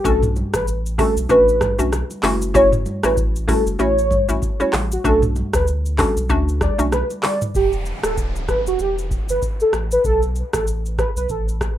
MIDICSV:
0, 0, Header, 1, 6, 480
1, 0, Start_track
1, 0, Key_signature, 2, "minor"
1, 0, Tempo, 625000
1, 36, Time_signature, 4, 2, 24, 8
1, 9047, End_track
2, 0, Start_track
2, 0, Title_t, "Soft synth lead"
2, 0, Program_c, 0, 80
2, 47, Note_on_c, 0, 69, 105
2, 161, Note_off_c, 0, 69, 0
2, 424, Note_on_c, 0, 71, 81
2, 506, Note_off_c, 0, 71, 0
2, 764, Note_on_c, 0, 69, 92
2, 879, Note_off_c, 0, 69, 0
2, 1004, Note_on_c, 0, 71, 96
2, 1357, Note_off_c, 0, 71, 0
2, 1964, Note_on_c, 0, 73, 100
2, 2079, Note_off_c, 0, 73, 0
2, 2345, Note_on_c, 0, 71, 73
2, 2427, Note_off_c, 0, 71, 0
2, 2685, Note_on_c, 0, 69, 82
2, 2800, Note_off_c, 0, 69, 0
2, 2924, Note_on_c, 0, 73, 102
2, 3276, Note_off_c, 0, 73, 0
2, 3544, Note_on_c, 0, 73, 87
2, 3626, Note_off_c, 0, 73, 0
2, 3785, Note_on_c, 0, 66, 83
2, 3867, Note_off_c, 0, 66, 0
2, 3884, Note_on_c, 0, 69, 115
2, 3999, Note_off_c, 0, 69, 0
2, 4264, Note_on_c, 0, 71, 76
2, 4346, Note_off_c, 0, 71, 0
2, 4606, Note_on_c, 0, 69, 84
2, 4720, Note_off_c, 0, 69, 0
2, 5085, Note_on_c, 0, 74, 82
2, 5200, Note_off_c, 0, 74, 0
2, 5323, Note_on_c, 0, 71, 93
2, 5438, Note_off_c, 0, 71, 0
2, 5564, Note_on_c, 0, 74, 79
2, 5679, Note_off_c, 0, 74, 0
2, 5804, Note_on_c, 0, 67, 89
2, 5919, Note_off_c, 0, 67, 0
2, 6183, Note_on_c, 0, 69, 76
2, 6265, Note_off_c, 0, 69, 0
2, 6522, Note_on_c, 0, 71, 81
2, 6638, Note_off_c, 0, 71, 0
2, 6665, Note_on_c, 0, 66, 79
2, 6746, Note_off_c, 0, 66, 0
2, 6768, Note_on_c, 0, 67, 89
2, 6881, Note_off_c, 0, 67, 0
2, 7144, Note_on_c, 0, 71, 81
2, 7226, Note_off_c, 0, 71, 0
2, 7385, Note_on_c, 0, 69, 76
2, 7467, Note_off_c, 0, 69, 0
2, 7623, Note_on_c, 0, 71, 84
2, 7705, Note_off_c, 0, 71, 0
2, 7723, Note_on_c, 0, 69, 109
2, 7838, Note_off_c, 0, 69, 0
2, 8100, Note_on_c, 0, 69, 76
2, 8184, Note_off_c, 0, 69, 0
2, 8443, Note_on_c, 0, 71, 87
2, 8558, Note_off_c, 0, 71, 0
2, 8581, Note_on_c, 0, 71, 81
2, 8664, Note_off_c, 0, 71, 0
2, 8684, Note_on_c, 0, 69, 77
2, 8799, Note_off_c, 0, 69, 0
2, 9047, End_track
3, 0, Start_track
3, 0, Title_t, "Synth pluck"
3, 0, Program_c, 1, 84
3, 33, Note_on_c, 1, 57, 91
3, 36, Note_on_c, 1, 61, 82
3, 37, Note_on_c, 1, 62, 88
3, 38, Note_on_c, 1, 66, 107
3, 482, Note_off_c, 1, 57, 0
3, 484, Note_off_c, 1, 61, 0
3, 484, Note_off_c, 1, 62, 0
3, 485, Note_off_c, 1, 66, 0
3, 754, Note_on_c, 1, 57, 82
3, 757, Note_on_c, 1, 61, 75
3, 758, Note_on_c, 1, 62, 72
3, 759, Note_on_c, 1, 66, 88
3, 885, Note_off_c, 1, 57, 0
3, 886, Note_off_c, 1, 61, 0
3, 887, Note_off_c, 1, 62, 0
3, 887, Note_off_c, 1, 66, 0
3, 993, Note_on_c, 1, 57, 92
3, 994, Note_on_c, 1, 61, 86
3, 995, Note_on_c, 1, 62, 86
3, 998, Note_on_c, 1, 66, 101
3, 1340, Note_off_c, 1, 57, 0
3, 1341, Note_off_c, 1, 61, 0
3, 1341, Note_off_c, 1, 62, 0
3, 1343, Note_off_c, 1, 66, 0
3, 1371, Note_on_c, 1, 57, 78
3, 1372, Note_on_c, 1, 61, 72
3, 1374, Note_on_c, 1, 62, 73
3, 1376, Note_on_c, 1, 66, 89
3, 1467, Note_off_c, 1, 57, 0
3, 1468, Note_off_c, 1, 61, 0
3, 1469, Note_off_c, 1, 62, 0
3, 1470, Note_off_c, 1, 66, 0
3, 1714, Note_on_c, 1, 57, 94
3, 1717, Note_on_c, 1, 61, 87
3, 1717, Note_on_c, 1, 64, 89
3, 1719, Note_on_c, 1, 66, 105
3, 1939, Note_off_c, 1, 57, 0
3, 1940, Note_off_c, 1, 61, 0
3, 1940, Note_off_c, 1, 64, 0
3, 1941, Note_off_c, 1, 66, 0
3, 1952, Note_on_c, 1, 57, 98
3, 1953, Note_on_c, 1, 61, 86
3, 1956, Note_on_c, 1, 64, 88
3, 1956, Note_on_c, 1, 66, 104
3, 2300, Note_off_c, 1, 57, 0
3, 2300, Note_off_c, 1, 61, 0
3, 2302, Note_off_c, 1, 64, 0
3, 2302, Note_off_c, 1, 66, 0
3, 2332, Note_on_c, 1, 57, 81
3, 2334, Note_on_c, 1, 61, 75
3, 2336, Note_on_c, 1, 64, 75
3, 2337, Note_on_c, 1, 66, 85
3, 2650, Note_off_c, 1, 57, 0
3, 2651, Note_off_c, 1, 61, 0
3, 2652, Note_off_c, 1, 64, 0
3, 2653, Note_off_c, 1, 66, 0
3, 2670, Note_on_c, 1, 57, 80
3, 2671, Note_on_c, 1, 61, 74
3, 2673, Note_on_c, 1, 64, 74
3, 2675, Note_on_c, 1, 66, 90
3, 2897, Note_off_c, 1, 57, 0
3, 2897, Note_off_c, 1, 61, 0
3, 2898, Note_off_c, 1, 64, 0
3, 2899, Note_off_c, 1, 66, 0
3, 2911, Note_on_c, 1, 57, 90
3, 2913, Note_on_c, 1, 61, 87
3, 2915, Note_on_c, 1, 64, 83
3, 2916, Note_on_c, 1, 66, 102
3, 3044, Note_off_c, 1, 57, 0
3, 3044, Note_off_c, 1, 61, 0
3, 3045, Note_off_c, 1, 64, 0
3, 3046, Note_off_c, 1, 66, 0
3, 3291, Note_on_c, 1, 57, 84
3, 3293, Note_on_c, 1, 61, 71
3, 3296, Note_on_c, 1, 64, 74
3, 3297, Note_on_c, 1, 66, 90
3, 3387, Note_off_c, 1, 57, 0
3, 3388, Note_off_c, 1, 61, 0
3, 3390, Note_off_c, 1, 64, 0
3, 3390, Note_off_c, 1, 66, 0
3, 3531, Note_on_c, 1, 57, 81
3, 3532, Note_on_c, 1, 61, 75
3, 3534, Note_on_c, 1, 64, 74
3, 3535, Note_on_c, 1, 66, 91
3, 3627, Note_off_c, 1, 57, 0
3, 3628, Note_off_c, 1, 61, 0
3, 3629, Note_off_c, 1, 64, 0
3, 3630, Note_off_c, 1, 66, 0
3, 3873, Note_on_c, 1, 57, 92
3, 3873, Note_on_c, 1, 61, 84
3, 3875, Note_on_c, 1, 62, 85
3, 3877, Note_on_c, 1, 66, 105
3, 4322, Note_off_c, 1, 57, 0
3, 4323, Note_off_c, 1, 61, 0
3, 4323, Note_off_c, 1, 62, 0
3, 4324, Note_off_c, 1, 66, 0
3, 4592, Note_on_c, 1, 57, 80
3, 4593, Note_on_c, 1, 61, 73
3, 4595, Note_on_c, 1, 62, 74
3, 4597, Note_on_c, 1, 66, 87
3, 4724, Note_off_c, 1, 57, 0
3, 4724, Note_off_c, 1, 61, 0
3, 4726, Note_off_c, 1, 62, 0
3, 4727, Note_off_c, 1, 66, 0
3, 4834, Note_on_c, 1, 57, 93
3, 4835, Note_on_c, 1, 61, 82
3, 4837, Note_on_c, 1, 62, 88
3, 4837, Note_on_c, 1, 66, 103
3, 5181, Note_off_c, 1, 57, 0
3, 5181, Note_off_c, 1, 61, 0
3, 5182, Note_off_c, 1, 62, 0
3, 5182, Note_off_c, 1, 66, 0
3, 5210, Note_on_c, 1, 57, 79
3, 5212, Note_on_c, 1, 61, 73
3, 5214, Note_on_c, 1, 62, 77
3, 5215, Note_on_c, 1, 66, 87
3, 5307, Note_off_c, 1, 57, 0
3, 5308, Note_off_c, 1, 61, 0
3, 5309, Note_off_c, 1, 62, 0
3, 5309, Note_off_c, 1, 66, 0
3, 9047, End_track
4, 0, Start_track
4, 0, Title_t, "Sub bass"
4, 0, Program_c, 2, 38
4, 38, Note_on_c, 2, 35, 112
4, 333, Note_off_c, 2, 35, 0
4, 417, Note_on_c, 2, 33, 84
4, 791, Note_off_c, 2, 33, 0
4, 895, Note_on_c, 2, 35, 91
4, 973, Note_off_c, 2, 35, 0
4, 997, Note_on_c, 2, 33, 100
4, 1292, Note_off_c, 2, 33, 0
4, 1375, Note_on_c, 2, 35, 96
4, 1562, Note_off_c, 2, 35, 0
4, 1714, Note_on_c, 2, 30, 108
4, 2197, Note_off_c, 2, 30, 0
4, 2334, Note_on_c, 2, 33, 77
4, 2709, Note_off_c, 2, 33, 0
4, 2814, Note_on_c, 2, 30, 86
4, 2893, Note_off_c, 2, 30, 0
4, 2914, Note_on_c, 2, 33, 107
4, 3211, Note_off_c, 2, 33, 0
4, 3296, Note_on_c, 2, 33, 93
4, 3374, Note_off_c, 2, 33, 0
4, 3635, Note_on_c, 2, 33, 96
4, 3823, Note_off_c, 2, 33, 0
4, 3876, Note_on_c, 2, 35, 106
4, 4172, Note_off_c, 2, 35, 0
4, 4257, Note_on_c, 2, 38, 90
4, 4631, Note_off_c, 2, 38, 0
4, 4735, Note_on_c, 2, 35, 87
4, 4836, Note_on_c, 2, 38, 102
4, 4848, Note_off_c, 2, 35, 0
4, 5132, Note_off_c, 2, 38, 0
4, 5215, Note_on_c, 2, 35, 92
4, 5402, Note_off_c, 2, 35, 0
4, 5796, Note_on_c, 2, 28, 101
4, 6092, Note_off_c, 2, 28, 0
4, 6174, Note_on_c, 2, 26, 87
4, 6549, Note_off_c, 2, 26, 0
4, 6654, Note_on_c, 2, 28, 90
4, 6733, Note_off_c, 2, 28, 0
4, 6755, Note_on_c, 2, 28, 100
4, 7051, Note_off_c, 2, 28, 0
4, 7135, Note_on_c, 2, 31, 87
4, 7214, Note_off_c, 2, 31, 0
4, 7475, Note_on_c, 2, 33, 94
4, 7663, Note_off_c, 2, 33, 0
4, 7714, Note_on_c, 2, 35, 112
4, 8011, Note_off_c, 2, 35, 0
4, 8095, Note_on_c, 2, 33, 86
4, 8469, Note_off_c, 2, 33, 0
4, 8573, Note_on_c, 2, 35, 85
4, 8652, Note_off_c, 2, 35, 0
4, 8676, Note_on_c, 2, 33, 94
4, 8972, Note_off_c, 2, 33, 0
4, 9047, End_track
5, 0, Start_track
5, 0, Title_t, "Downlifter"
5, 0, Program_c, 3, 103
5, 5796, Note_on_c, 3, 60, 82
5, 9047, Note_off_c, 3, 60, 0
5, 9047, End_track
6, 0, Start_track
6, 0, Title_t, "Drums"
6, 37, Note_on_c, 9, 36, 114
6, 39, Note_on_c, 9, 82, 82
6, 42, Note_on_c, 9, 64, 66
6, 114, Note_off_c, 9, 36, 0
6, 116, Note_off_c, 9, 82, 0
6, 119, Note_off_c, 9, 64, 0
6, 174, Note_on_c, 9, 45, 109
6, 176, Note_on_c, 9, 82, 49
6, 250, Note_off_c, 9, 45, 0
6, 253, Note_off_c, 9, 82, 0
6, 276, Note_on_c, 9, 82, 50
6, 279, Note_on_c, 9, 63, 84
6, 353, Note_off_c, 9, 82, 0
6, 356, Note_off_c, 9, 63, 0
6, 411, Note_on_c, 9, 37, 125
6, 414, Note_on_c, 9, 82, 93
6, 417, Note_on_c, 9, 36, 101
6, 488, Note_off_c, 9, 37, 0
6, 491, Note_off_c, 9, 82, 0
6, 494, Note_off_c, 9, 36, 0
6, 520, Note_on_c, 9, 82, 78
6, 597, Note_off_c, 9, 82, 0
6, 661, Note_on_c, 9, 82, 60
6, 738, Note_off_c, 9, 82, 0
6, 757, Note_on_c, 9, 36, 91
6, 760, Note_on_c, 9, 37, 87
6, 760, Note_on_c, 9, 46, 78
6, 760, Note_on_c, 9, 63, 92
6, 760, Note_on_c, 9, 64, 86
6, 760, Note_on_c, 9, 82, 54
6, 834, Note_off_c, 9, 36, 0
6, 837, Note_off_c, 9, 37, 0
6, 837, Note_off_c, 9, 46, 0
6, 837, Note_off_c, 9, 63, 0
6, 837, Note_off_c, 9, 64, 0
6, 837, Note_off_c, 9, 82, 0
6, 899, Note_on_c, 9, 82, 89
6, 976, Note_off_c, 9, 82, 0
6, 993, Note_on_c, 9, 82, 63
6, 997, Note_on_c, 9, 36, 97
6, 1070, Note_off_c, 9, 82, 0
6, 1074, Note_off_c, 9, 36, 0
6, 1140, Note_on_c, 9, 82, 60
6, 1217, Note_off_c, 9, 82, 0
6, 1233, Note_on_c, 9, 45, 71
6, 1236, Note_on_c, 9, 36, 103
6, 1236, Note_on_c, 9, 37, 103
6, 1239, Note_on_c, 9, 63, 79
6, 1240, Note_on_c, 9, 82, 51
6, 1310, Note_off_c, 9, 45, 0
6, 1312, Note_off_c, 9, 37, 0
6, 1313, Note_off_c, 9, 36, 0
6, 1315, Note_off_c, 9, 63, 0
6, 1317, Note_off_c, 9, 82, 0
6, 1376, Note_on_c, 9, 82, 97
6, 1452, Note_off_c, 9, 82, 0
6, 1477, Note_on_c, 9, 64, 69
6, 1479, Note_on_c, 9, 37, 96
6, 1479, Note_on_c, 9, 82, 77
6, 1554, Note_off_c, 9, 64, 0
6, 1555, Note_off_c, 9, 37, 0
6, 1556, Note_off_c, 9, 82, 0
6, 1617, Note_on_c, 9, 63, 52
6, 1617, Note_on_c, 9, 82, 55
6, 1694, Note_off_c, 9, 63, 0
6, 1694, Note_off_c, 9, 82, 0
6, 1715, Note_on_c, 9, 37, 104
6, 1715, Note_on_c, 9, 39, 101
6, 1717, Note_on_c, 9, 46, 78
6, 1717, Note_on_c, 9, 82, 55
6, 1719, Note_on_c, 9, 63, 84
6, 1719, Note_on_c, 9, 64, 81
6, 1791, Note_off_c, 9, 37, 0
6, 1791, Note_off_c, 9, 39, 0
6, 1794, Note_off_c, 9, 46, 0
6, 1794, Note_off_c, 9, 82, 0
6, 1796, Note_off_c, 9, 63, 0
6, 1796, Note_off_c, 9, 64, 0
6, 1856, Note_on_c, 9, 82, 99
6, 1933, Note_off_c, 9, 82, 0
6, 1956, Note_on_c, 9, 36, 116
6, 1957, Note_on_c, 9, 82, 82
6, 1960, Note_on_c, 9, 64, 68
6, 2033, Note_off_c, 9, 36, 0
6, 2034, Note_off_c, 9, 82, 0
6, 2037, Note_off_c, 9, 64, 0
6, 2092, Note_on_c, 9, 45, 106
6, 2094, Note_on_c, 9, 82, 48
6, 2169, Note_off_c, 9, 45, 0
6, 2171, Note_off_c, 9, 82, 0
6, 2194, Note_on_c, 9, 82, 52
6, 2195, Note_on_c, 9, 63, 89
6, 2271, Note_off_c, 9, 82, 0
6, 2272, Note_off_c, 9, 63, 0
6, 2330, Note_on_c, 9, 37, 126
6, 2333, Note_on_c, 9, 82, 94
6, 2407, Note_off_c, 9, 37, 0
6, 2410, Note_off_c, 9, 82, 0
6, 2436, Note_on_c, 9, 36, 94
6, 2437, Note_on_c, 9, 82, 75
6, 2513, Note_off_c, 9, 36, 0
6, 2514, Note_off_c, 9, 82, 0
6, 2579, Note_on_c, 9, 82, 62
6, 2656, Note_off_c, 9, 82, 0
6, 2675, Note_on_c, 9, 36, 92
6, 2677, Note_on_c, 9, 37, 94
6, 2677, Note_on_c, 9, 63, 88
6, 2677, Note_on_c, 9, 64, 86
6, 2678, Note_on_c, 9, 46, 74
6, 2678, Note_on_c, 9, 82, 56
6, 2752, Note_off_c, 9, 36, 0
6, 2754, Note_off_c, 9, 37, 0
6, 2754, Note_off_c, 9, 63, 0
6, 2754, Note_off_c, 9, 64, 0
6, 2755, Note_off_c, 9, 46, 0
6, 2755, Note_off_c, 9, 82, 0
6, 2817, Note_on_c, 9, 82, 83
6, 2894, Note_off_c, 9, 82, 0
6, 2912, Note_on_c, 9, 82, 62
6, 2989, Note_off_c, 9, 82, 0
6, 3060, Note_on_c, 9, 82, 62
6, 3137, Note_off_c, 9, 82, 0
6, 3153, Note_on_c, 9, 45, 69
6, 3154, Note_on_c, 9, 63, 84
6, 3155, Note_on_c, 9, 36, 101
6, 3160, Note_on_c, 9, 82, 53
6, 3230, Note_off_c, 9, 45, 0
6, 3231, Note_off_c, 9, 63, 0
6, 3232, Note_off_c, 9, 36, 0
6, 3237, Note_off_c, 9, 82, 0
6, 3295, Note_on_c, 9, 82, 100
6, 3371, Note_off_c, 9, 82, 0
6, 3395, Note_on_c, 9, 64, 69
6, 3397, Note_on_c, 9, 36, 101
6, 3399, Note_on_c, 9, 82, 75
6, 3471, Note_off_c, 9, 64, 0
6, 3474, Note_off_c, 9, 36, 0
6, 3475, Note_off_c, 9, 82, 0
6, 3534, Note_on_c, 9, 82, 54
6, 3535, Note_on_c, 9, 63, 53
6, 3611, Note_off_c, 9, 82, 0
6, 3612, Note_off_c, 9, 63, 0
6, 3634, Note_on_c, 9, 37, 106
6, 3634, Note_on_c, 9, 39, 104
6, 3637, Note_on_c, 9, 46, 78
6, 3637, Note_on_c, 9, 82, 54
6, 3638, Note_on_c, 9, 63, 80
6, 3638, Note_on_c, 9, 64, 77
6, 3711, Note_off_c, 9, 37, 0
6, 3711, Note_off_c, 9, 39, 0
6, 3713, Note_off_c, 9, 46, 0
6, 3713, Note_off_c, 9, 82, 0
6, 3715, Note_off_c, 9, 63, 0
6, 3715, Note_off_c, 9, 64, 0
6, 3777, Note_on_c, 9, 82, 96
6, 3854, Note_off_c, 9, 82, 0
6, 3876, Note_on_c, 9, 36, 109
6, 3877, Note_on_c, 9, 82, 84
6, 3878, Note_on_c, 9, 64, 67
6, 3953, Note_off_c, 9, 36, 0
6, 3954, Note_off_c, 9, 82, 0
6, 3955, Note_off_c, 9, 64, 0
6, 4011, Note_on_c, 9, 45, 102
6, 4014, Note_on_c, 9, 82, 47
6, 4088, Note_off_c, 9, 45, 0
6, 4090, Note_off_c, 9, 82, 0
6, 4114, Note_on_c, 9, 82, 52
6, 4117, Note_on_c, 9, 63, 89
6, 4191, Note_off_c, 9, 82, 0
6, 4194, Note_off_c, 9, 63, 0
6, 4250, Note_on_c, 9, 37, 119
6, 4253, Note_on_c, 9, 82, 95
6, 4257, Note_on_c, 9, 36, 101
6, 4327, Note_off_c, 9, 37, 0
6, 4330, Note_off_c, 9, 82, 0
6, 4334, Note_off_c, 9, 36, 0
6, 4358, Note_on_c, 9, 82, 79
6, 4435, Note_off_c, 9, 82, 0
6, 4499, Note_on_c, 9, 82, 59
6, 4575, Note_off_c, 9, 82, 0
6, 4596, Note_on_c, 9, 36, 91
6, 4598, Note_on_c, 9, 37, 92
6, 4598, Note_on_c, 9, 39, 91
6, 4598, Note_on_c, 9, 46, 76
6, 4598, Note_on_c, 9, 82, 54
6, 4599, Note_on_c, 9, 63, 90
6, 4599, Note_on_c, 9, 64, 93
6, 4673, Note_off_c, 9, 36, 0
6, 4675, Note_off_c, 9, 37, 0
6, 4675, Note_off_c, 9, 39, 0
6, 4675, Note_off_c, 9, 46, 0
6, 4675, Note_off_c, 9, 82, 0
6, 4676, Note_off_c, 9, 63, 0
6, 4676, Note_off_c, 9, 64, 0
6, 4739, Note_on_c, 9, 82, 86
6, 4816, Note_off_c, 9, 82, 0
6, 4833, Note_on_c, 9, 82, 61
6, 4837, Note_on_c, 9, 36, 93
6, 4910, Note_off_c, 9, 82, 0
6, 4914, Note_off_c, 9, 36, 0
6, 4981, Note_on_c, 9, 82, 62
6, 5058, Note_off_c, 9, 82, 0
6, 5076, Note_on_c, 9, 36, 102
6, 5076, Note_on_c, 9, 37, 101
6, 5078, Note_on_c, 9, 63, 78
6, 5081, Note_on_c, 9, 82, 51
6, 5153, Note_off_c, 9, 36, 0
6, 5153, Note_off_c, 9, 37, 0
6, 5155, Note_off_c, 9, 63, 0
6, 5158, Note_off_c, 9, 82, 0
6, 5216, Note_on_c, 9, 82, 97
6, 5293, Note_off_c, 9, 82, 0
6, 5317, Note_on_c, 9, 37, 102
6, 5318, Note_on_c, 9, 64, 68
6, 5318, Note_on_c, 9, 82, 80
6, 5394, Note_off_c, 9, 37, 0
6, 5395, Note_off_c, 9, 64, 0
6, 5395, Note_off_c, 9, 82, 0
6, 5455, Note_on_c, 9, 82, 53
6, 5457, Note_on_c, 9, 63, 54
6, 5532, Note_off_c, 9, 82, 0
6, 5534, Note_off_c, 9, 63, 0
6, 5554, Note_on_c, 9, 37, 103
6, 5554, Note_on_c, 9, 39, 102
6, 5557, Note_on_c, 9, 46, 80
6, 5557, Note_on_c, 9, 82, 54
6, 5558, Note_on_c, 9, 63, 83
6, 5558, Note_on_c, 9, 64, 82
6, 5631, Note_off_c, 9, 37, 0
6, 5631, Note_off_c, 9, 39, 0
6, 5633, Note_off_c, 9, 46, 0
6, 5633, Note_off_c, 9, 82, 0
6, 5635, Note_off_c, 9, 63, 0
6, 5635, Note_off_c, 9, 64, 0
6, 5696, Note_on_c, 9, 82, 96
6, 5697, Note_on_c, 9, 45, 95
6, 5773, Note_off_c, 9, 82, 0
6, 5774, Note_off_c, 9, 45, 0
6, 5796, Note_on_c, 9, 36, 110
6, 5796, Note_on_c, 9, 82, 80
6, 5873, Note_off_c, 9, 36, 0
6, 5873, Note_off_c, 9, 82, 0
6, 5933, Note_on_c, 9, 82, 46
6, 6010, Note_off_c, 9, 82, 0
6, 6034, Note_on_c, 9, 82, 50
6, 6111, Note_off_c, 9, 82, 0
6, 6170, Note_on_c, 9, 37, 118
6, 6173, Note_on_c, 9, 82, 88
6, 6247, Note_off_c, 9, 37, 0
6, 6250, Note_off_c, 9, 82, 0
6, 6276, Note_on_c, 9, 36, 91
6, 6278, Note_on_c, 9, 82, 74
6, 6353, Note_off_c, 9, 36, 0
6, 6355, Note_off_c, 9, 82, 0
6, 6418, Note_on_c, 9, 82, 57
6, 6495, Note_off_c, 9, 82, 0
6, 6515, Note_on_c, 9, 36, 88
6, 6517, Note_on_c, 9, 37, 89
6, 6517, Note_on_c, 9, 82, 53
6, 6592, Note_off_c, 9, 36, 0
6, 6593, Note_off_c, 9, 37, 0
6, 6594, Note_off_c, 9, 82, 0
6, 6656, Note_on_c, 9, 82, 83
6, 6733, Note_off_c, 9, 82, 0
6, 6752, Note_on_c, 9, 82, 60
6, 6829, Note_off_c, 9, 82, 0
6, 6900, Note_on_c, 9, 82, 57
6, 6976, Note_off_c, 9, 82, 0
6, 6995, Note_on_c, 9, 36, 101
6, 6999, Note_on_c, 9, 82, 51
6, 7071, Note_off_c, 9, 36, 0
6, 7076, Note_off_c, 9, 82, 0
6, 7133, Note_on_c, 9, 82, 95
6, 7210, Note_off_c, 9, 82, 0
6, 7236, Note_on_c, 9, 36, 95
6, 7237, Note_on_c, 9, 82, 74
6, 7313, Note_off_c, 9, 36, 0
6, 7314, Note_off_c, 9, 82, 0
6, 7374, Note_on_c, 9, 82, 53
6, 7451, Note_off_c, 9, 82, 0
6, 7472, Note_on_c, 9, 37, 96
6, 7475, Note_on_c, 9, 82, 54
6, 7549, Note_off_c, 9, 37, 0
6, 7551, Note_off_c, 9, 82, 0
6, 7613, Note_on_c, 9, 82, 92
6, 7690, Note_off_c, 9, 82, 0
6, 7714, Note_on_c, 9, 36, 109
6, 7714, Note_on_c, 9, 82, 83
6, 7791, Note_off_c, 9, 36, 0
6, 7791, Note_off_c, 9, 82, 0
6, 7851, Note_on_c, 9, 82, 44
6, 7928, Note_off_c, 9, 82, 0
6, 7953, Note_on_c, 9, 82, 50
6, 8029, Note_off_c, 9, 82, 0
6, 8090, Note_on_c, 9, 37, 125
6, 8092, Note_on_c, 9, 82, 92
6, 8095, Note_on_c, 9, 36, 100
6, 8166, Note_off_c, 9, 37, 0
6, 8169, Note_off_c, 9, 82, 0
6, 8172, Note_off_c, 9, 36, 0
6, 8197, Note_on_c, 9, 82, 79
6, 8274, Note_off_c, 9, 82, 0
6, 8338, Note_on_c, 9, 82, 57
6, 8415, Note_off_c, 9, 82, 0
6, 8435, Note_on_c, 9, 36, 86
6, 8438, Note_on_c, 9, 37, 92
6, 8438, Note_on_c, 9, 82, 51
6, 8512, Note_off_c, 9, 36, 0
6, 8514, Note_off_c, 9, 37, 0
6, 8515, Note_off_c, 9, 82, 0
6, 8577, Note_on_c, 9, 82, 85
6, 8654, Note_off_c, 9, 82, 0
6, 8671, Note_on_c, 9, 82, 61
6, 8676, Note_on_c, 9, 36, 90
6, 8748, Note_off_c, 9, 82, 0
6, 8753, Note_off_c, 9, 36, 0
6, 8821, Note_on_c, 9, 82, 59
6, 8898, Note_off_c, 9, 82, 0
6, 8915, Note_on_c, 9, 36, 99
6, 8916, Note_on_c, 9, 37, 95
6, 8921, Note_on_c, 9, 82, 50
6, 8992, Note_off_c, 9, 36, 0
6, 8993, Note_off_c, 9, 37, 0
6, 8997, Note_off_c, 9, 82, 0
6, 9047, End_track
0, 0, End_of_file